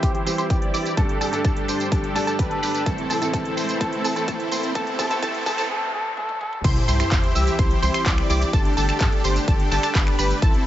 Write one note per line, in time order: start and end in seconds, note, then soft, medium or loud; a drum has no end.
0.00 0.25 E3 medium
0.00 0.96 E3 medium
0.00 0.26 G3 medium
0.00 0.27 C4 medium
0.00 0.96 C4 medium
0.00 0.24 E4 medium
0.00 0.28 G4 medium
0.00 0.96 G4 medium
0.00 0.24 G4 medium
0.00 0.11 G4 medium
0.00 0.24 C5 medium
0.00 0.24 C6 medium
0.00 kick loud
0.00 closed hi-hat medium
0.00 tambourine soft
0.00 riser medium
0.15 0.22 G4 medium
0.15 closed hi-hat soft
0.25 0.94 E3 medium
0.25 0.94 G3 medium
0.25 0.95 C4 medium
0.25 0.37 E4 medium
0.25 0.37 G4 medium
0.25 0.95 G4 medium
0.25 0.37 C5 loud
0.25 0.37 C6 loud
0.25 open hi-hat medium
0.25 tambourine medium
0.38 0.47 E4 loud
0.38 0.46 G4 medium
0.38 0.47 G4 medium
0.38 0.47 C5 loud
0.38 0.47 C6 loud
0.38 closed hi-hat medium
0.38 tambourine soft
0.50 0.71 E4 medium
0.50 0.58 G4 medium
0.50 0.71 G4 medium
0.50 0.71 D5 medium
0.50 0.71 D6 medium
0.50 kick loud
0.50 closed hi-hat medium
0.50 tambourine soft
0.62 closed hi-hat soft
0.74 0.95 E4 medium
0.74 0.95 G4 medium
0.74 0.95 D5 loud
0.74 0.95 D6 loud
0.74 open hi-hat loud
0.74 tambourine medium
0.86 closed hi-hat medium
0.86 tambourine soft
0.97 1.30 G2 medium
0.97 1.30 G3 medium
0.97 2.85 G3 medium
0.97 1.30 A3 medium
0.97 2.85 D4 medium
0.97 1.18 D4 medium
0.97 1.30 D4 medium
0.97 1.18 G4 medium
0.97 4.72 A4 medium
0.97 1.18 A4 loud
0.97 1.30 A4 medium
0.97 1.18 A5 loud
0.97 kick loud
0.97 closed hi-hat medium
0.97 tambourine soft
1.09 closed hi-hat soft
1.21 1.30 D4 medium
1.21 1.30 G4 medium
1.21 1.40 A4 medium
1.21 1.30 A4 medium
1.21 1.30 A5 medium
1.21 open hi-hat loud
1.21 tambourine medium
1.32 2.12 G2 medium
1.32 2.12 G3 medium
1.32 2.13 A3 medium
1.32 1.42 D4 medium
1.32 2.13 D4 medium
1.32 1.42 G4 medium
1.32 1.42 A4 medium
1.32 2.13 A4 medium
1.32 1.42 A5 medium
1.32 closed hi-hat medium
1.32 tambourine soft
1.45 1.66 D4 medium
1.45 1.66 A4 loud
1.45 1.65 A5 loud
1.45 kick loud
1.45 closed hi-hat medium
1.45 tambourine soft
1.57 closed hi-hat soft
1.68 1.89 D4 medium
1.68 1.89 G4 medium
1.68 1.89 C5 medium
1.68 1.89 C6 medium
1.68 open hi-hat loud
1.68 tambourine medium
1.80 closed hi-hat medium
1.80 tambourine soft
1.92 2.13 D4 medium
1.92 2.13 G4 medium
1.92 2.13 A4 medium
1.92 2.13 A5 medium
1.92 kick loud
1.92 closed hi-hat medium
1.92 tambourine soft
2.04 closed hi-hat soft
2.14 2.83 G2 medium
2.14 2.83 G3 medium
2.14 2.84 A3 medium
2.14 2.26 D4 medium
2.14 2.84 D4 medium
2.14 2.26 G4 medium
2.14 2.26 A4 loud
2.14 2.84 A4 medium
2.14 2.26 A5 loud
2.14 open hi-hat loud
2.14 tambourine medium
2.27 2.36 D4 medium
2.27 2.36 G4 medium
2.27 2.36 A4 loud
2.27 2.36 A5 loud
2.27 closed hi-hat medium
2.27 tambourine soft
2.39 2.60 D4 medium
2.39 2.60 G4 medium
2.39 2.60 B4 medium
2.39 2.60 B5 medium
2.39 kick loud
2.39 closed hi-hat medium
2.39 tambourine soft
2.51 2.86 A4 medium
2.51 closed hi-hat soft
2.63 2.84 D4 loud
2.63 2.84 G4 medium
2.63 2.84 B4 loud
2.63 2.84 B5 loud
2.63 open hi-hat loud
2.63 tambourine medium
2.75 closed hi-hat medium
2.75 tambourine soft
2.86 3.19 A2 medium
2.86 3.19 E3 medium
2.86 4.73 E3 medium
2.86 3.19 A3 medium
2.86 4.73 C4 medium
2.86 3.07 C4 medium
2.86 3.19 C4 medium
2.86 3.07 E4 medium
2.86 3.07 A4 loud
2.86 3.19 A4 medium
2.86 3.07 A5 loud
2.86 kick loud
2.86 closed hi-hat medium
2.86 tambourine soft
2.98 closed hi-hat soft
3.10 3.19 C4 medium
3.10 3.19 E4 medium
3.10 3.29 A4 medium
3.10 3.19 A4 medium
3.10 3.19 A5 medium
3.10 open hi-hat loud
3.10 tambourine medium
3.21 3.78 A2 medium
3.21 3.79 E3 medium
3.21 3.79 A3 medium
3.21 3.31 C4 medium
3.21 3.79 C4 medium
3.21 3.31 E4 medium
3.21 3.31 A4 medium
3.21 3.80 A4 medium
3.21 3.31 A5 medium
3.21 closed hi-hat medium
3.21 tambourine soft
3.33 3.54 C4 medium
3.33 3.54 E4 medium
3.33 3.54 A4 medium
3.33 3.54 A5 medium
3.33 kick loud
3.33 closed hi-hat medium
3.33 tambourine soft
3.45 closed hi-hat soft
3.57 3.78 C4 medium
3.57 3.78 E4 medium
3.57 3.78 C5 medium
3.57 3.78 C6 medium
3.57 open hi-hat loud
3.57 tambourine medium
3.69 closed hi-hat soft
3.69 tambourine soft
3.80 4.13 A2 medium
3.80 4.13 E3 medium
3.80 4.14 A3 medium
3.80 4.02 C4 medium
3.80 4.14 C4 medium
3.80 4.02 E4 medium
3.80 4.02 A4 loud
3.80 4.14 A4 medium
3.80 4.02 A5 loud
3.80 kick loud
3.80 closed hi-hat medium
3.80 tambourine soft
3.93 closed hi-hat soft
4.04 4.13 C4 medium
4.04 4.13 E4 medium
4.04 4.13 A4 medium
4.04 4.24 A4 medium
4.04 4.13 A5 medium
4.04 open hi-hat loud
4.04 tambourine medium
4.15 4.73 A2 medium
4.15 4.73 E3 medium
4.15 4.73 A3 medium
4.15 4.25 C4 medium
4.15 4.74 C4 medium
4.15 4.25 E4 medium
4.15 4.25 A4 medium
4.15 4.74 A4 medium
4.15 4.25 A5 medium
4.15 closed hi-hat medium
4.15 tambourine soft
4.28 4.49 C4 medium
4.28 4.49 E4 medium
4.28 4.49 A4 loud
4.28 4.49 A5 loud
4.28 kick loud
4.28 closed hi-hat medium
4.28 tambourine soft
4.40 closed hi-hat soft
4.52 4.73 C4 medium
4.52 4.73 E4 medium
4.52 4.73 C5 medium
4.52 4.73 C6 medium
4.52 open hi-hat loud
4.52 tambourine medium
4.63 closed hi-hat soft
4.63 tambourine soft
4.75 5.08 A2 medium
4.75 5.08 E3 medium
4.75 5.08 A3 medium
4.75 5.69 A3 medium
4.75 4.96 C4 loud
4.75 5.08 C4 medium
4.75 4.96 E4 medium
4.75 5.69 G4 medium
4.75 4.96 A4 loud
4.75 5.08 A4 medium
4.75 4.96 A5 loud
4.75 kick loud
4.75 closed hi-hat medium
4.75 tambourine soft
4.75 noise sweep medium
4.87 closed hi-hat soft
4.99 5.08 C4 medium
4.99 5.08 E4 medium
4.99 5.08 A4 medium
4.99 5.18 A4 medium
4.99 5.08 A5 medium
4.99 kick loud
4.99 open hi-hat loud
4.99 tambourine medium
5.10 5.20 A2 medium
5.10 5.20 E3 medium
5.10 5.21 A3 medium
5.10 5.20 C4 medium
5.10 5.21 C4 medium
5.10 5.20 E4 medium
5.10 5.20 A4 medium
5.10 5.21 A4 medium
5.10 5.20 A5 medium
5.10 closed hi-hat medium
5.10 tambourine soft
5.22 5.55 A2 medium
5.22 5.55 E3 medium
5.22 5.55 A3 medium
5.22 5.43 C4 loud
5.22 5.55 C4 medium
5.22 5.43 E4 medium
5.22 5.43 A4 loud
5.22 5.55 A4 medium
5.22 5.43 A5 loud
5.22 kick loud
5.22 closed hi-hat medium
5.22 tambourine soft
5.34 closed hi-hat soft
5.46 5.55 C4 medium
5.46 5.55 E4 medium
5.46 5.55 A4 medium
5.46 5.66 A4 medium
5.46 5.55 A5 medium
5.46 kick loud
5.46 open hi-hat loud
5.46 tambourine medium
5.57 5.67 A2 medium
5.57 5.68 E3 medium
5.57 5.68 A3 medium
5.57 5.67 C4 medium
5.57 5.68 C4 medium
5.57 5.67 E4 medium
5.57 5.67 A4 medium
5.57 5.69 A4 medium
5.57 5.67 A5 medium
5.57 closed hi-hat soft
5.57 tambourine soft
5.70 5.89 A4 medium
5.94 6.13 A4 medium
6.17 6.36 A4 loud
6.17 high tom medium
6.29 high tom medium
6.41 6.60 A4 medium
6.41 mid tom medium
6.53 mid tom medium
6.64 6.79 C2 loud
6.64 8.52 E3 medium
6.64 8.52 C4 medium
6.64 6.85 E4 loud
6.64 8.52 G4 medium
6.64 6.85 G4 medium
6.64 6.85 C5 loud
6.64 6.85 C6 loud
6.64 kick loud
6.64 closed hi-hat medium
6.64 crash loud
6.64 tambourine soft
6.64 sub drop medium
6.76 closed hi-hat soft
6.88 7.03 C2 medium
6.88 6.97 E4 medium
6.88 6.97 G4 medium
6.88 6.97 C5 medium
6.88 6.97 C6 medium
6.88 open hi-hat loud
6.88 tambourine medium
7.00 7.09 E4 medium
7.00 7.09 G4 medium
7.00 7.09 C5 medium
7.00 7.09 C6 medium
7.00 finger snap medium
7.00 closed hi-hat medium
7.00 tambourine soft
7.12 7.19 G1 loud
7.12 7.32 E4 medium
7.12 7.32 G4 medium
7.12 7.32 C6 loud
7.12 kick loud
7.12 clap loud
7.12 closed hi-hat medium
7.12 tambourine soft
7.24 closed hi-hat soft
7.35 7.50 C2 medium
7.35 7.56 E4 medium
7.35 7.56 G4 medium
7.35 7.56 E5 medium
7.35 7.56 E6 medium
7.35 open hi-hat loud
7.35 tambourine medium
7.47 closed hi-hat medium
7.47 tambourine soft
7.59 7.74 C2 medium
7.59 7.80 E4 medium
7.59 7.80 G4 medium
7.59 7.80 C5 medium
7.59 7.80 C6 medium
7.59 kick loud
7.59 closed hi-hat medium
7.59 tambourine soft
7.71 closed hi-hat soft
7.82 7.90 C2 medium
7.82 7.93 E4 medium
7.82 7.93 G4 medium
7.82 7.93 C5 loud
7.82 7.93 C6 loud
7.82 open hi-hat loud
7.82 tambourine medium
7.94 8.03 E4 loud
7.94 8.03 G4 medium
7.94 8.03 C5 loud
7.94 8.03 C6 loud
7.94 finger snap medium
7.94 closed hi-hat medium
7.94 tambourine soft
8.06 8.21 C2 medium
8.06 8.27 G4 medium
8.06 8.27 D5 medium
8.06 8.27 D6 medium
8.06 kick loud
8.06 clap loud
8.06 closed hi-hat medium
8.06 tambourine soft
8.18 finger snap medium
8.18 closed hi-hat soft
8.30 8.44 C2 medium
8.30 8.51 E4 loud
8.30 8.51 G4 medium
8.30 8.51 D5 loud
8.30 8.51 D6 loud
8.30 open hi-hat loud
8.30 tambourine medium
8.42 closed hi-hat medium
8.42 tambourine soft
8.53 8.68 G1 loud
8.53 10.40 D3 medium
8.53 10.67 A3 medium
8.53 8.74 D4 loud
8.53 10.40 G4 medium
8.53 8.74 G4 medium
8.53 8.74 A4 loud
8.53 8.74 A5 loud
8.53 kick loud
8.53 closed hi-hat medium
8.53 tambourine soft
8.65 closed hi-hat soft
8.77 8.92 G1 medium
8.77 8.86 D4 medium
8.77 8.86 G4 medium
8.77 8.86 A4 medium
8.77 8.86 A5 loud
8.77 open hi-hat loud
8.77 tambourine medium
8.89 8.98 D4 medium
8.89 8.98 G4 medium
8.89 8.98 A4 medium
8.89 8.98 A5 medium
8.89 finger snap medium
8.89 closed hi-hat medium
8.89 tambourine soft
9.00 9.08 G2 loud
9.00 9.21 D4 loud
9.00 9.21 G4 medium
9.00 9.21 A4 loud
9.00 9.21 A5 loud
9.00 kick loud
9.00 clap loud
9.00 closed hi-hat medium
9.00 tambourine soft
9.12 closed hi-hat soft
9.24 9.39 G1 medium
9.24 9.45 D4 medium
9.24 9.45 G4 medium
9.24 9.45 C5 medium
9.24 9.45 C6 medium
9.24 open hi-hat loud
9.24 tambourine medium
9.36 closed hi-hat medium
9.36 tambourine soft
9.48 9.62 G1 medium
9.48 9.69 D4 medium
9.48 9.69 G4 medium
9.48 9.69 A4 medium
9.48 9.69 A5 medium
9.48 kick loud
9.48 closed hi-hat medium
9.48 tambourine soft
9.60 closed hi-hat soft
9.71 9.79 G1 medium
9.71 9.82 D4 loud
9.71 9.82 G4 medium
9.71 9.82 A4 loud
9.71 9.82 A5 loud
9.71 clap soft
9.71 open hi-hat loud
9.71 tambourine medium
9.83 9.92 D4 loud
9.83 9.92 G4 medium
9.83 9.92 A4 loud
9.83 9.92 A5 loud
9.83 finger snap medium
9.83 closed hi-hat medium
9.83 tambourine soft
9.95 10.10 G1 medium
9.95 10.16 D4 medium
9.95 10.16 G4 medium
9.95 10.16 B4 medium
9.95 10.16 B5 loud
9.95 kick loud
9.95 clap loud
9.95 closed hi-hat medium
9.95 tambourine soft
10.07 finger snap medium
10.07 closed hi-hat soft
10.19 10.33 G1 medium
10.19 10.40 D4 loud
10.19 10.40 G4 medium
10.19 10.40 B4 loud
10.19 10.39 B5 loud
10.19 open hi-hat loud
10.19 tambourine medium
10.31 closed hi-hat medium
10.31 tambourine soft
10.42 10.57 A1 loud
10.42 10.67 C3 medium
10.42 10.63 C4 loud
10.42 10.67 E4 medium
10.42 10.63 E4 medium
10.42 10.63 A4 loud
10.42 10.63 A5 loud
10.42 kick loud
10.42 closed hi-hat medium
10.42 tambourine soft
10.54 closed hi-hat soft